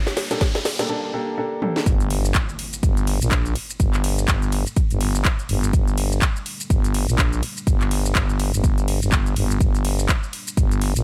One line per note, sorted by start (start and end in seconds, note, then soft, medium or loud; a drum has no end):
0.00 0.86 G3 medium
0.00 0.85 A#3 medium
0.00 0.85 D4 medium
0.00 riser medium
0.07 snare medium
0.17 snare medium
0.17 open hi-hat loud
0.31 0.39 A#3 medium
0.31 0.39 D4 medium
0.31 0.39 G4 medium
0.31 0.39 A4 loud
0.31 snare medium
0.31 closed hi-hat medium
0.41 kick loud
0.41 snare loud
0.41 closed hi-hat soft
0.55 snare medium
0.65 snare loud
0.65 open hi-hat loud
0.79 0.88 A#3 medium
0.79 0.88 D4 medium
0.79 0.88 G4 medium
0.79 0.88 A4 medium
0.79 snare medium
0.79 closed hi-hat medium
0.89 1.11 A#3 medium
0.89 1.11 D4 medium
0.89 1.11 G4 medium
0.89 1.11 A4 medium
1.13 1.35 A#3 loud
1.13 1.35 D4 medium
1.13 1.35 G4 medium
1.13 1.35 A4 loud
1.38 1.59 A#3 medium
1.38 1.59 D4 medium
1.38 1.59 G4 medium
1.38 1.59 A4 medium
1.62 1.83 A#3 medium
1.62 1.83 D4 medium
1.62 1.83 G4 medium
1.62 1.83 A4 loud
1.62 high tom medium
1.76 snare medium
1.86 2.33 G1 loud
1.86 11.03 G3 medium
1.86 11.03 A#3 medium
1.86 11.03 D4 medium
1.86 9.59 A4 medium
1.86 kick loud
1.86 closed hi-hat medium
1.86 impact medium
1.86 shaker medium
2.00 closed hi-hat soft
2.00 shaker soft
2.10 open hi-hat loud
2.10 ride medium
2.24 closed hi-hat soft
2.24 shaker medium
2.35 kick loud
2.35 clap loud
2.35 closed hi-hat medium
2.35 shaker medium
2.49 shaker soft
2.59 open hi-hat medium
2.59 ride medium
2.73 closed hi-hat medium
2.73 shaker medium
2.83 3.19 G1 loud
2.83 kick loud
2.83 closed hi-hat medium
2.83 shaker medium
2.97 closed hi-hat medium
2.97 shaker soft
3.07 open hi-hat loud
3.07 ride medium
3.21 3.54 A#1 loud
3.21 closed hi-hat soft
3.21 shaker medium
3.31 kick loud
3.31 clap loud
3.31 closed hi-hat medium
3.31 shaker medium
3.45 closed hi-hat soft
3.45 shaker soft
3.56 open hi-hat loud
3.56 ride medium
3.70 closed hi-hat soft
3.70 shaker medium
3.80 4.27 G1 loud
3.80 kick loud
3.80 closed hi-hat medium
3.80 shaker medium
3.94 clap soft
3.94 closed hi-hat soft
3.94 shaker soft
4.04 open hi-hat loud
4.04 ride medium
4.18 closed hi-hat soft
4.18 shaker medium
4.28 kick loud
4.28 clap loud
4.28 closed hi-hat medium
4.28 shaker medium
4.42 closed hi-hat soft
4.42 shaker soft
4.52 open hi-hat loud
4.52 ride medium
4.66 closed hi-hat medium
4.66 shaker medium
4.76 kick loud
4.76 closed hi-hat medium
4.76 shaker medium
4.90 5.23 G1 loud
4.90 closed hi-hat medium
4.90 shaker soft
5.01 open hi-hat loud
5.01 ride medium
5.15 shaker medium
5.25 kick loud
5.25 clap loud
5.25 closed hi-hat medium
5.25 shaker medium
5.39 closed hi-hat soft
5.39 shaker soft
5.49 5.72 G1 loud
5.49 open hi-hat loud
5.49 ride medium
5.63 closed hi-hat soft
5.63 shaker medium
5.73 6.20 G1 medium
5.73 kick loud
5.73 closed hi-hat medium
5.73 shaker medium
5.87 closed hi-hat soft
5.87 shaker soft
5.98 open hi-hat loud
5.98 ride medium
6.12 shaker medium
6.22 kick loud
6.22 clap loud
6.22 closed hi-hat medium
6.22 shaker medium
6.36 shaker soft
6.46 open hi-hat loud
6.46 ride medium
6.60 closed hi-hat medium
6.60 shaker medium
6.70 7.06 G1 medium
6.70 kick loud
6.70 closed hi-hat medium
6.70 shaker medium
6.84 closed hi-hat soft
6.84 shaker soft
6.94 open hi-hat loud
6.94 ride medium
7.08 7.41 A#1 loud
7.08 shaker medium
7.19 kick loud
7.19 clap loud
7.19 closed hi-hat medium
7.19 shaker medium
7.33 closed hi-hat soft
7.33 shaker soft
7.43 open hi-hat loud
7.43 ride medium
7.57 closed hi-hat soft
7.57 shaker medium
7.67 8.14 G1 loud
7.67 kick loud
7.67 closed hi-hat medium
7.67 shaker medium
7.81 clap soft
7.81 closed hi-hat soft
7.81 shaker soft
7.91 open hi-hat loud
7.91 ride medium
8.05 closed hi-hat soft
8.05 shaker medium
8.15 8.51 G1 loud
8.15 kick loud
8.15 clap loud
8.15 closed hi-hat medium
8.15 shaker medium
8.29 closed hi-hat soft
8.29 shaker soft
8.40 open hi-hat loud
8.40 ride medium
8.53 9.00 G1 loud
8.53 closed hi-hat medium
8.53 shaker medium
8.64 kick loud
8.64 closed hi-hat medium
8.64 shaker medium
8.78 closed hi-hat medium
8.78 shaker soft
8.88 open hi-hat loud
8.88 ride medium
9.02 9.35 G1 medium
9.02 closed hi-hat soft
9.02 shaker medium
9.12 kick loud
9.12 clap loud
9.12 closed hi-hat medium
9.12 shaker medium
9.26 closed hi-hat soft
9.26 shaker soft
9.36 9.59 G1 loud
9.36 open hi-hat loud
9.36 ride medium
9.50 closed hi-hat soft
9.50 shaker medium
9.60 11.03 A#4 medium
9.60 kick loud
9.60 closed hi-hat medium
9.60 shaker medium
9.75 closed hi-hat soft
9.75 shaker soft
9.85 open hi-hat loud
9.85 ride medium
9.99 shaker medium
10.09 kick loud
10.09 clap loud
10.09 closed hi-hat medium
10.09 shaker medium
10.23 shaker soft
10.33 open hi-hat medium
10.33 ride medium
10.47 closed hi-hat medium
10.47 shaker medium
10.57 10.93 G1 loud
10.57 kick loud
10.57 closed hi-hat medium
10.57 shaker medium
10.71 closed hi-hat soft
10.71 shaker soft
10.81 open hi-hat loud
10.81 ride medium
10.95 11.03 A#1 loud
10.95 closed hi-hat soft
10.95 shaker medium